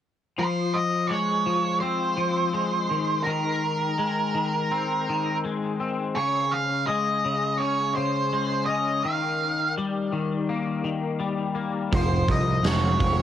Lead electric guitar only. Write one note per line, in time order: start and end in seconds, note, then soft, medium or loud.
0.39 0.76 C5 medium
0.74 1.12 D#5 medium
1.07 1.80 C#5 medium
1.80 3.31 C5 medium
3.23 5.38 A#4 medium
6.16 6.53 C#5 medium
6.52 6.87 F5 medium
6.87 7.62 D#5 medium
7.58 7.94 C#5 medium
7.95 8.65 C5 medium
8.66 9.04 D#5 medium
9.03 9.72 F5 medium
11.95 12.31 C5 medium
12.31 12.67 D#5 medium
12.68 13.22 C#5 medium